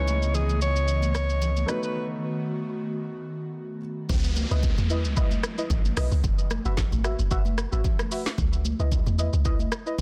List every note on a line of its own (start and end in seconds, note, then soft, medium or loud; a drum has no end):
0.00 1.65 C#2 medium
0.00 1.64 C#3 medium
0.00 1.67 E3 medium
0.00 1.63 G#3 medium
0.00 4.06 B3 medium
0.00 1.64 C#4 medium
0.00 1.65 D#4 medium
0.00 1.65 E4 medium
0.00 1.66 B4 medium
0.00 0.37 C#5 loud
0.00 1.67 D#5 medium
0.07 high conga medium
0.07 shaker medium
0.22 high conga soft
0.22 shaker soft
0.34 0.62 G#4 medium
0.34 low conga medium
0.34 shaker medium
0.49 high conga medium
0.49 shaker medium
0.61 1.11 C#5 loud
0.61 shaker medium
0.76 shaker medium
0.88 shaker medium
1.02 high conga medium
1.02 shaker soft
1.15 1.70 C#5 loud
1.15 cross-stick medium
1.15 shaker medium
1.29 shaker soft
1.42 low conga medium
1.42 shaker medium
1.57 high conga medium
1.57 shaker soft
1.66 4.07 D#3 medium
1.66 3.78 A3 medium
1.66 4.07 A3 medium
1.66 3.78 B3 medium
1.66 3.79 D#4 medium
1.66 4.07 F#4 medium
1.66 3.79 F#4 medium
1.66 1.83 B4 medium
1.66 cross-stick medium
1.66 shaker medium
1.71 3.80 B4 medium
1.83 2.08 B4 medium
1.83 shaker medium
4.09 4.45 C#2 loud
4.09 kick loud
4.09 downlifter medium
4.09 low conga medium
4.09 shaker medium
4.24 shaker medium
4.36 high conga medium
4.36 shaker medium
4.51 4.74 C#2 medium
4.51 4.60 E4 medium
4.51 4.60 B4 medium
4.51 4.60 D#5 medium
4.51 shaker medium
4.63 kick loud
4.63 low conga medium
4.63 shaker medium
4.78 5.06 E2 medium
4.78 high conga medium
4.78 shaker medium
4.90 5.00 E4 medium
4.90 5.01 B4 medium
4.90 5.01 D#5 medium
4.90 shaker medium
5.05 5.38 C#2 medium
5.05 shaker medium
5.16 5.27 E4 loud
5.16 5.27 B4 medium
5.16 5.27 D#5 loud
5.16 kick loud
5.16 shaker medium
5.31 high conga medium
5.31 shaker medium
5.43 cross-stick loud
5.43 shaker medium
5.58 5.67 E4 medium
5.58 5.67 B4 medium
5.58 5.67 D#5 medium
5.58 shaker medium
5.70 5.93 G#1 medium
5.70 kick medium
5.70 low conga medium
5.70 shaker medium
5.85 high conga medium
5.85 shaker medium
5.97 6.10 B1 medium
5.97 6.08 E4 medium
5.97 6.08 B4 medium
5.97 6.08 D#5 medium
5.97 cross-stick medium
5.97 open hi-hat medium
5.97 shaker loud
6.12 6.22 C#2 loud
6.12 shaker medium
6.24 6.60 F#1 loud
6.24 kick loud
6.24 low conga medium
6.24 shaker medium
6.38 shaker medium
6.50 cross-stick medium
6.50 high conga medium
6.50 shaker medium
6.65 6.88 F#1 loud
6.65 6.74 F#4 medium
6.65 6.74 B4 medium
6.65 6.74 E5 medium
6.65 shaker medium
6.77 kick loud
6.77 snare medium
6.77 low conga medium
6.77 shaker medium
6.92 7.15 G#1 medium
6.92 high conga medium
6.92 shaker medium
7.04 7.15 F#4 medium
7.04 7.15 B4 medium
7.04 7.15 E5 medium
7.04 cross-stick loud
7.04 shaker loud
7.19 7.29 F#1 medium
7.19 shaker medium
7.31 7.67 F#1 loud
7.31 7.41 F#4 loud
7.31 7.42 B4 medium
7.31 7.42 E5 loud
7.31 kick loud
7.31 shaker medium
7.45 high conga medium
7.45 shaker soft
7.58 cross-stick loud
7.58 shaker medium
7.72 7.83 G#1 loud
7.72 7.81 F#4 medium
7.72 7.81 B4 medium
7.72 7.81 E5 medium
7.72 shaker soft
7.84 kick loud
7.84 low conga medium
7.84 shaker medium
7.99 cross-stick loud
7.99 high conga medium
7.99 shaker medium
8.11 8.22 F#4 medium
8.11 8.22 B4 medium
8.11 8.22 E5 medium
8.11 open hi-hat medium
8.11 shaker loud
8.26 snare medium
8.26 shaker medium
8.38 8.74 C#2 loud
8.38 kick loud
8.38 low conga medium
8.38 shaker medium
8.53 shaker medium
8.65 high conga medium
8.65 shaker medium
8.79 9.03 C#2 medium
8.79 8.88 E4 medium
8.79 8.88 B4 medium
8.79 8.88 D#5 medium
8.79 shaker medium
8.92 kick loud
8.92 low conga medium
8.92 shaker medium
9.06 9.29 E2 medium
9.06 high conga medium
9.06 shaker medium
9.18 9.29 E4 medium
9.18 9.29 B4 medium
9.18 9.29 D#5 medium
9.18 shaker medium
9.33 9.67 C#2 medium
9.33 shaker medium
9.45 9.56 E4 loud
9.45 9.56 B4 medium
9.45 9.56 D#5 loud
9.45 kick loud
9.45 shaker medium
9.59 high conga medium
9.59 shaker soft
9.72 cross-stick loud
9.72 shaker medium
9.86 9.95 E4 medium
9.86 9.95 B4 medium
9.86 9.96 D#5 medium
9.86 shaker medium